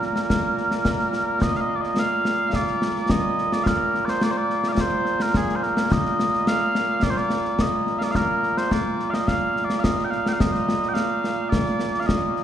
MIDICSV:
0, 0, Header, 1, 3, 480
1, 0, Start_track
1, 0, Key_signature, -2, "major"
1, 0, Tempo, 560748
1, 1216, Time_signature, 4, 2, 24, 8
1, 10645, End_track
2, 0, Start_track
2, 0, Title_t, "Bagpipes"
2, 0, Program_c, 0, 109
2, 0, Note_on_c, 0, 46, 89
2, 0, Note_on_c, 0, 58, 89
2, 0, Note_on_c, 0, 70, 77
2, 1214, Note_off_c, 0, 70, 0
2, 1214, Note_on_c, 0, 75, 106
2, 1338, Note_off_c, 0, 75, 0
2, 1338, Note_on_c, 0, 77, 74
2, 1374, Note_off_c, 0, 77, 0
2, 1374, Note_on_c, 0, 75, 113
2, 1503, Note_off_c, 0, 75, 0
2, 1503, Note_on_c, 0, 74, 70
2, 1549, Note_off_c, 0, 74, 0
2, 1549, Note_on_c, 0, 75, 106
2, 1702, Note_off_c, 0, 75, 0
2, 1702, Note_on_c, 0, 77, 109
2, 2184, Note_off_c, 0, 77, 0
2, 2184, Note_on_c, 0, 74, 103
2, 2656, Note_off_c, 0, 74, 0
2, 2656, Note_on_c, 0, 75, 90
2, 3020, Note_off_c, 0, 75, 0
2, 3020, Note_on_c, 0, 74, 94
2, 3110, Note_off_c, 0, 74, 0
2, 3110, Note_on_c, 0, 77, 101
2, 3141, Note_off_c, 0, 77, 0
2, 3141, Note_on_c, 0, 70, 101
2, 3468, Note_off_c, 0, 70, 0
2, 3468, Note_on_c, 0, 74, 96
2, 3502, Note_off_c, 0, 74, 0
2, 3502, Note_on_c, 0, 72, 96
2, 3622, Note_off_c, 0, 72, 0
2, 3622, Note_on_c, 0, 74, 105
2, 3688, Note_off_c, 0, 74, 0
2, 3688, Note_on_c, 0, 72, 82
2, 3740, Note_off_c, 0, 72, 0
2, 3740, Note_on_c, 0, 74, 105
2, 4007, Note_off_c, 0, 74, 0
2, 4007, Note_on_c, 0, 77, 66
2, 4041, Note_off_c, 0, 77, 0
2, 4041, Note_on_c, 0, 74, 66
2, 4112, Note_off_c, 0, 74, 0
2, 4112, Note_on_c, 0, 72, 97
2, 4469, Note_off_c, 0, 72, 0
2, 4469, Note_on_c, 0, 70, 90
2, 4595, Note_off_c, 0, 70, 0
2, 4595, Note_on_c, 0, 68, 76
2, 4758, Note_off_c, 0, 68, 0
2, 4758, Note_on_c, 0, 72, 66
2, 4820, Note_off_c, 0, 72, 0
2, 4820, Note_on_c, 0, 70, 90
2, 5067, Note_off_c, 0, 70, 0
2, 5067, Note_on_c, 0, 75, 109
2, 5544, Note_off_c, 0, 75, 0
2, 5544, Note_on_c, 0, 77, 110
2, 6017, Note_off_c, 0, 77, 0
2, 6017, Note_on_c, 0, 74, 107
2, 6077, Note_off_c, 0, 74, 0
2, 6077, Note_on_c, 0, 72, 93
2, 6141, Note_off_c, 0, 72, 0
2, 6141, Note_on_c, 0, 74, 110
2, 6512, Note_off_c, 0, 74, 0
2, 6512, Note_on_c, 0, 75, 84
2, 6837, Note_off_c, 0, 75, 0
2, 6837, Note_on_c, 0, 77, 94
2, 6875, Note_off_c, 0, 77, 0
2, 6875, Note_on_c, 0, 74, 94
2, 6943, Note_off_c, 0, 74, 0
2, 6943, Note_on_c, 0, 77, 108
2, 6981, Note_off_c, 0, 77, 0
2, 6981, Note_on_c, 0, 70, 108
2, 7342, Note_off_c, 0, 70, 0
2, 7342, Note_on_c, 0, 72, 100
2, 7462, Note_off_c, 0, 72, 0
2, 7462, Note_on_c, 0, 74, 102
2, 7791, Note_off_c, 0, 74, 0
2, 7791, Note_on_c, 0, 77, 87
2, 7823, Note_off_c, 0, 77, 0
2, 7823, Note_on_c, 0, 75, 87
2, 7941, Note_off_c, 0, 75, 0
2, 7941, Note_on_c, 0, 77, 99
2, 8255, Note_off_c, 0, 77, 0
2, 8255, Note_on_c, 0, 74, 94
2, 8385, Note_off_c, 0, 74, 0
2, 8385, Note_on_c, 0, 77, 81
2, 8421, Note_off_c, 0, 77, 0
2, 8421, Note_on_c, 0, 75, 81
2, 8597, Note_off_c, 0, 75, 0
2, 8597, Note_on_c, 0, 79, 62
2, 8651, Note_off_c, 0, 79, 0
2, 8651, Note_on_c, 0, 77, 82
2, 8804, Note_off_c, 0, 77, 0
2, 8804, Note_on_c, 0, 79, 70
2, 8842, Note_off_c, 0, 79, 0
2, 8842, Note_on_c, 0, 77, 70
2, 8907, Note_off_c, 0, 77, 0
2, 8907, Note_on_c, 0, 75, 101
2, 9317, Note_off_c, 0, 75, 0
2, 9317, Note_on_c, 0, 79, 69
2, 9364, Note_off_c, 0, 79, 0
2, 9364, Note_on_c, 0, 77, 92
2, 9838, Note_off_c, 0, 77, 0
2, 9838, Note_on_c, 0, 74, 101
2, 10270, Note_off_c, 0, 74, 0
2, 10270, Note_on_c, 0, 77, 69
2, 10327, Note_off_c, 0, 77, 0
2, 10327, Note_on_c, 0, 75, 90
2, 10645, Note_off_c, 0, 46, 0
2, 10645, Note_off_c, 0, 58, 0
2, 10645, Note_off_c, 0, 75, 0
2, 10645, End_track
3, 0, Start_track
3, 0, Title_t, "Drums"
3, 18, Note_on_c, 9, 38, 26
3, 103, Note_off_c, 9, 38, 0
3, 134, Note_on_c, 9, 38, 65
3, 220, Note_off_c, 9, 38, 0
3, 257, Note_on_c, 9, 35, 55
3, 257, Note_on_c, 9, 38, 86
3, 342, Note_off_c, 9, 35, 0
3, 342, Note_off_c, 9, 38, 0
3, 493, Note_on_c, 9, 38, 29
3, 579, Note_off_c, 9, 38, 0
3, 610, Note_on_c, 9, 38, 67
3, 696, Note_off_c, 9, 38, 0
3, 728, Note_on_c, 9, 35, 49
3, 728, Note_on_c, 9, 38, 85
3, 813, Note_off_c, 9, 35, 0
3, 813, Note_off_c, 9, 38, 0
3, 851, Note_on_c, 9, 38, 27
3, 937, Note_off_c, 9, 38, 0
3, 969, Note_on_c, 9, 38, 63
3, 1054, Note_off_c, 9, 38, 0
3, 1211, Note_on_c, 9, 35, 56
3, 1211, Note_on_c, 9, 38, 91
3, 1297, Note_off_c, 9, 35, 0
3, 1297, Note_off_c, 9, 38, 0
3, 1325, Note_on_c, 9, 38, 28
3, 1411, Note_off_c, 9, 38, 0
3, 1571, Note_on_c, 9, 38, 26
3, 1657, Note_off_c, 9, 38, 0
3, 1683, Note_on_c, 9, 38, 90
3, 1769, Note_off_c, 9, 38, 0
3, 1927, Note_on_c, 9, 38, 75
3, 2013, Note_off_c, 9, 38, 0
3, 2167, Note_on_c, 9, 35, 50
3, 2167, Note_on_c, 9, 38, 89
3, 2253, Note_off_c, 9, 35, 0
3, 2253, Note_off_c, 9, 38, 0
3, 2289, Note_on_c, 9, 38, 28
3, 2375, Note_off_c, 9, 38, 0
3, 2413, Note_on_c, 9, 38, 76
3, 2498, Note_off_c, 9, 38, 0
3, 2532, Note_on_c, 9, 38, 24
3, 2617, Note_off_c, 9, 38, 0
3, 2649, Note_on_c, 9, 35, 55
3, 2649, Note_on_c, 9, 38, 94
3, 2735, Note_off_c, 9, 35, 0
3, 2735, Note_off_c, 9, 38, 0
3, 2895, Note_on_c, 9, 38, 27
3, 2980, Note_off_c, 9, 38, 0
3, 3016, Note_on_c, 9, 38, 78
3, 3102, Note_off_c, 9, 38, 0
3, 3135, Note_on_c, 9, 35, 54
3, 3135, Note_on_c, 9, 38, 84
3, 3220, Note_off_c, 9, 35, 0
3, 3220, Note_off_c, 9, 38, 0
3, 3377, Note_on_c, 9, 38, 27
3, 3463, Note_off_c, 9, 38, 0
3, 3492, Note_on_c, 9, 38, 67
3, 3578, Note_off_c, 9, 38, 0
3, 3608, Note_on_c, 9, 38, 87
3, 3693, Note_off_c, 9, 38, 0
3, 3851, Note_on_c, 9, 38, 29
3, 3937, Note_off_c, 9, 38, 0
3, 3968, Note_on_c, 9, 38, 64
3, 4054, Note_off_c, 9, 38, 0
3, 4087, Note_on_c, 9, 35, 53
3, 4087, Note_on_c, 9, 38, 99
3, 4172, Note_off_c, 9, 35, 0
3, 4172, Note_off_c, 9, 38, 0
3, 4329, Note_on_c, 9, 38, 27
3, 4414, Note_off_c, 9, 38, 0
3, 4450, Note_on_c, 9, 38, 71
3, 4536, Note_off_c, 9, 38, 0
3, 4573, Note_on_c, 9, 35, 53
3, 4573, Note_on_c, 9, 38, 91
3, 4659, Note_off_c, 9, 35, 0
3, 4659, Note_off_c, 9, 38, 0
3, 4698, Note_on_c, 9, 38, 29
3, 4784, Note_off_c, 9, 38, 0
3, 4818, Note_on_c, 9, 38, 27
3, 4904, Note_off_c, 9, 38, 0
3, 4938, Note_on_c, 9, 38, 82
3, 5024, Note_off_c, 9, 38, 0
3, 5063, Note_on_c, 9, 35, 63
3, 5063, Note_on_c, 9, 38, 94
3, 5149, Note_off_c, 9, 35, 0
3, 5149, Note_off_c, 9, 38, 0
3, 5183, Note_on_c, 9, 38, 32
3, 5269, Note_off_c, 9, 38, 0
3, 5302, Note_on_c, 9, 38, 74
3, 5388, Note_off_c, 9, 38, 0
3, 5423, Note_on_c, 9, 38, 27
3, 5509, Note_off_c, 9, 38, 0
3, 5540, Note_on_c, 9, 38, 94
3, 5626, Note_off_c, 9, 38, 0
3, 5779, Note_on_c, 9, 38, 72
3, 5864, Note_off_c, 9, 38, 0
3, 6014, Note_on_c, 9, 35, 56
3, 6014, Note_on_c, 9, 38, 95
3, 6099, Note_off_c, 9, 35, 0
3, 6099, Note_off_c, 9, 38, 0
3, 6136, Note_on_c, 9, 38, 28
3, 6222, Note_off_c, 9, 38, 0
3, 6250, Note_on_c, 9, 38, 67
3, 6336, Note_off_c, 9, 38, 0
3, 6375, Note_on_c, 9, 38, 24
3, 6461, Note_off_c, 9, 38, 0
3, 6494, Note_on_c, 9, 35, 50
3, 6494, Note_on_c, 9, 38, 91
3, 6580, Note_off_c, 9, 35, 0
3, 6580, Note_off_c, 9, 38, 0
3, 6737, Note_on_c, 9, 38, 21
3, 6822, Note_off_c, 9, 38, 0
3, 6859, Note_on_c, 9, 38, 66
3, 6945, Note_off_c, 9, 38, 0
3, 6974, Note_on_c, 9, 35, 53
3, 6974, Note_on_c, 9, 38, 72
3, 7060, Note_off_c, 9, 35, 0
3, 7060, Note_off_c, 9, 38, 0
3, 7217, Note_on_c, 9, 38, 24
3, 7303, Note_off_c, 9, 38, 0
3, 7339, Note_on_c, 9, 38, 62
3, 7424, Note_off_c, 9, 38, 0
3, 7458, Note_on_c, 9, 35, 47
3, 7458, Note_on_c, 9, 38, 82
3, 7544, Note_off_c, 9, 35, 0
3, 7544, Note_off_c, 9, 38, 0
3, 7700, Note_on_c, 9, 38, 24
3, 7785, Note_off_c, 9, 38, 0
3, 7821, Note_on_c, 9, 38, 69
3, 7907, Note_off_c, 9, 38, 0
3, 7942, Note_on_c, 9, 35, 47
3, 7942, Note_on_c, 9, 38, 73
3, 8028, Note_off_c, 9, 35, 0
3, 8028, Note_off_c, 9, 38, 0
3, 8186, Note_on_c, 9, 38, 27
3, 8272, Note_off_c, 9, 38, 0
3, 8302, Note_on_c, 9, 38, 73
3, 8387, Note_off_c, 9, 38, 0
3, 8423, Note_on_c, 9, 35, 51
3, 8423, Note_on_c, 9, 38, 90
3, 8509, Note_off_c, 9, 35, 0
3, 8509, Note_off_c, 9, 38, 0
3, 8549, Note_on_c, 9, 38, 26
3, 8635, Note_off_c, 9, 38, 0
3, 8663, Note_on_c, 9, 38, 24
3, 8749, Note_off_c, 9, 38, 0
3, 8786, Note_on_c, 9, 38, 74
3, 8871, Note_off_c, 9, 38, 0
3, 8905, Note_on_c, 9, 35, 60
3, 8905, Note_on_c, 9, 38, 89
3, 8990, Note_off_c, 9, 35, 0
3, 8990, Note_off_c, 9, 38, 0
3, 9028, Note_on_c, 9, 38, 27
3, 9114, Note_off_c, 9, 38, 0
3, 9148, Note_on_c, 9, 38, 72
3, 9233, Note_off_c, 9, 38, 0
3, 9269, Note_on_c, 9, 38, 27
3, 9355, Note_off_c, 9, 38, 0
3, 9386, Note_on_c, 9, 38, 80
3, 9471, Note_off_c, 9, 38, 0
3, 9623, Note_on_c, 9, 38, 64
3, 9708, Note_off_c, 9, 38, 0
3, 9863, Note_on_c, 9, 35, 58
3, 9863, Note_on_c, 9, 38, 92
3, 9949, Note_off_c, 9, 35, 0
3, 9949, Note_off_c, 9, 38, 0
3, 9979, Note_on_c, 9, 38, 29
3, 10065, Note_off_c, 9, 38, 0
3, 10097, Note_on_c, 9, 38, 75
3, 10182, Note_off_c, 9, 38, 0
3, 10222, Note_on_c, 9, 38, 26
3, 10307, Note_off_c, 9, 38, 0
3, 10347, Note_on_c, 9, 35, 51
3, 10347, Note_on_c, 9, 38, 94
3, 10433, Note_off_c, 9, 35, 0
3, 10433, Note_off_c, 9, 38, 0
3, 10581, Note_on_c, 9, 38, 22
3, 10645, Note_off_c, 9, 38, 0
3, 10645, End_track
0, 0, End_of_file